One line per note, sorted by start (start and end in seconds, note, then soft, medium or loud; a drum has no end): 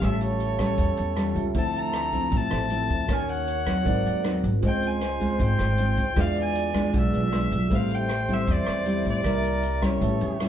0.00 0.75 A1 medium
0.00 0.76 A2 medium
0.00 0.56 G3 medium
0.00 0.56 C#4 medium
0.00 0.57 F4 medium
0.00 1.33 G4 soft
0.00 1.51 A4 medium
0.00 1.34 C#5 soft
0.00 1.32 F5 soft
0.00 kick medium
0.00 cross-stick soft
0.00 closed hi-hat soft
0.04 1.35 E5 soft
0.04 0.22 E5 medium
0.21 1.34 C#5 medium
0.21 closed hi-hat soft
0.40 closed hi-hat soft
0.58 1.14 G3 medium
0.58 1.14 C#4 medium
0.58 kick soft
0.58 cross-stick medium
0.58 closed hi-hat soft
0.78 0.96 E2 medium
0.78 kick medium
0.78 closed hi-hat soft
0.97 1.33 E2 medium
0.97 closed hi-hat soft
1.15 1.53 G3 medium
1.15 1.54 C#4 medium
1.15 1.53 F4 medium
1.15 cross-stick medium
1.15 closed hi-hat soft
1.35 1.54 C#2 medium
1.35 1.55 F4 soft
1.35 1.55 G4 soft
1.35 1.56 C#5 soft
1.35 1.56 E5 soft
1.35 kick soft
1.35 closed hi-hat soft
1.54 2.28 D2 medium
1.54 2.30 D3 medium
1.54 2.10 F3 soft
1.54 2.49 A3 soft
1.54 2.10 C4 soft
1.54 2.10 E4 medium
1.54 2.78 A4 medium
1.54 2.50 C5 soft
1.54 kick medium
1.54 closed hi-hat soft
1.58 2.51 E5 soft
1.58 1.80 A5 medium
1.74 closed hi-hat soft
1.78 2.38 A#5 loud
1.93 cross-stick medium
1.93 closed hi-hat soft
2.12 2.68 F3 medium
2.12 2.68 C4 medium
2.12 2.68 E4 medium
2.12 kick soft
2.12 closed hi-hat soft
2.32 2.50 A1 medium
2.32 3.07 A2 medium
2.32 kick medium
2.32 closed hi-hat soft
2.37 3.15 A5 loud
2.51 2.87 A1 medium
2.51 3.09 A4 soft
2.51 3.10 C5 soft
2.51 3.10 E5 soft
2.51 cross-stick medium
2.51 closed hi-hat soft
2.70 3.06 F3 medium
2.70 3.06 C4 medium
2.70 3.07 E4 medium
2.70 closed hi-hat soft
2.89 3.08 D2 medium
2.89 kick soft
2.89 closed hi-hat soft
3.07 3.82 D#2 medium
3.07 3.66 D#3 medium
3.07 3.47 A#3 medium
3.07 3.47 C#4 medium
3.07 3.82 F#4 soft
3.07 3.48 F#4 medium
3.07 3.84 A#4 soft
3.07 3.88 C#5 loud
3.07 kick medium
3.07 cross-stick medium
3.07 closed hi-hat soft
3.11 3.86 C#5 soft
3.11 3.31 G#5 loud
3.11 3.86 F6 medium
3.28 4.42 F#5 loud
3.28 closed hi-hat soft
3.47 closed hi-hat soft
3.66 4.21 F#3 medium
3.66 4.21 C4 medium
3.66 4.22 D#4 medium
3.66 kick soft
3.66 cross-stick medium
3.66 closed hi-hat soft
3.83 4.04 G#1 medium
3.83 4.61 G#2 medium
3.83 4.60 F#4 medium
3.83 4.61 A#4 medium
3.83 4.62 C5 medium
3.83 4.44 D5 loud
3.83 kick medium
3.83 closed hi-hat soft
3.89 4.63 D#4 medium
4.05 4.42 D#2 medium
4.05 closed hi-hat soft
4.24 4.49 F#3 medium
4.24 4.49 C4 medium
4.24 4.50 D#4 medium
4.24 cross-stick medium
4.24 closed hi-hat soft
4.43 4.62 G#1 medium
4.43 kick soft
4.43 closed hi-hat soft
4.59 5.36 C#2 medium
4.59 5.38 C#3 medium
4.59 5.01 G#3 medium
4.59 6.12 F4 soft
4.59 6.13 G#4 soft
4.59 6.13 C5 loud
4.59 kick medium
4.59 closed hi-hat soft
4.63 5.02 C4 medium
4.63 5.02 F4 medium
4.63 6.14 C5 soft
4.63 6.15 D#5 medium
4.67 4.89 G5 medium
4.83 closed hi-hat soft
4.87 5.42 G#5 medium
5.01 cross-stick medium
5.01 closed hi-hat soft
5.20 5.75 G#3 medium
5.20 5.75 C4 medium
5.20 5.76 F4 medium
5.20 kick soft
5.20 closed hi-hat soft
5.39 5.58 G#1 medium
5.39 6.15 G#2 medium
5.39 kick medium
5.39 closed hi-hat soft
5.44 6.22 G5 medium
5.59 5.95 G#1 medium
5.59 cross-stick medium
5.59 closed hi-hat soft
5.78 6.03 G#3 medium
5.78 6.03 C4 medium
5.78 6.04 F4 medium
5.78 closed hi-hat soft
5.97 6.15 C#2 medium
5.97 kick soft
5.97 closed hi-hat soft
6.14 6.90 E2 medium
6.14 6.92 E3 medium
6.14 6.71 G#3 medium
6.14 6.71 D4 medium
6.14 7.10 F4 soft
6.14 6.71 F4 medium
6.14 7.11 G#4 soft
6.14 7.40 D5 loud
6.14 kick medium
6.14 cross-stick medium
6.14 closed hi-hat soft
6.18 7.12 B4 soft
6.18 7.13 D5 medium
6.18 6.38 F5 medium
6.36 closed hi-hat soft
6.41 6.93 G#5 loud
6.55 closed hi-hat soft
6.74 7.29 G#3 medium
6.74 7.29 D4 medium
6.74 7.29 F4 medium
6.74 kick soft
6.74 cross-stick medium
6.74 closed hi-hat soft
6.92 7.12 B1 medium
6.92 7.68 B2 medium
6.92 kick medium
6.92 closed hi-hat soft
6.99 7.77 E5 medium
7.12 7.49 B1 medium
7.12 7.71 F4 soft
7.12 7.71 G#4 soft
7.12 7.72 B4 soft
7.12 7.72 D5 soft
7.12 closed hi-hat soft
7.32 7.57 G#3 medium
7.32 7.57 D4 medium
7.32 7.57 F4 medium
7.32 cross-stick medium
7.32 closed hi-hat soft
7.51 7.70 B1 medium
7.51 kick soft
7.51 closed hi-hat soft
7.68 8.44 A1 medium
7.68 8.46 A2 medium
7.68 8.09 G3 medium
7.68 8.09 C4 medium
7.68 8.09 E4 medium
7.68 9.20 G4 soft
7.68 9.21 A4 soft
7.68 9.21 C5 medium
7.68 kick medium
7.68 closed hi-hat soft
7.72 9.22 C5 soft
7.72 9.23 E5 medium
7.72 7.96 F5 medium
7.90 closed hi-hat soft
7.95 8.35 G5 medium
8.09 cross-stick medium
8.09 closed hi-hat soft
8.28 8.83 G3 medium
8.28 8.83 C4 medium
8.28 8.84 E4 medium
8.28 kick soft
8.28 closed hi-hat soft
8.33 8.54 E5 medium
8.47 8.66 E2 medium
8.47 9.23 E3 medium
8.47 kick medium
8.47 closed hi-hat soft
8.52 9.08 D5 medium
8.66 9.03 E2 medium
8.66 cross-stick medium
8.66 closed hi-hat soft
8.86 9.21 G3 medium
8.86 9.22 C4 medium
8.86 9.22 E4 medium
8.86 closed hi-hat soft
9.05 9.23 A1 medium
9.05 kick soft
9.05 closed hi-hat soft
9.10 9.81 D5 medium
9.22 9.98 C2 medium
9.22 10.00 C3 medium
9.22 9.63 G3 medium
9.22 9.63 A#3 medium
9.22 9.63 E4 medium
9.22 9.97 G4 soft
9.22 10.00 A#4 soft
9.22 9.97 A#4 medium
9.22 kick medium
9.22 cross-stick medium
9.22 closed hi-hat soft
9.26 10.01 D5 soft
9.26 10.02 E5 soft
9.44 closed hi-hat soft
9.63 closed hi-hat soft
9.81 10.37 G3 medium
9.81 10.37 C#4 medium
9.81 10.37 E4 medium
9.81 10.49 C#5 medium
9.81 kick soft
9.81 cross-stick medium
9.81 closed hi-hat soft
9.98 10.20 A1 medium
9.98 10.49 A2 medium
9.98 10.49 G4 soft
9.98 10.49 A4 medium
9.98 10.49 B4 soft
9.98 kick medium
9.98 closed hi-hat soft
10.02 10.49 C#5 soft
10.02 10.49 E5 soft
10.21 10.49 E2 medium
10.21 closed hi-hat soft
10.39 10.49 G3 medium
10.39 10.49 C#4 medium
10.39 10.49 E4 medium
10.39 cross-stick medium
10.39 closed hi-hat soft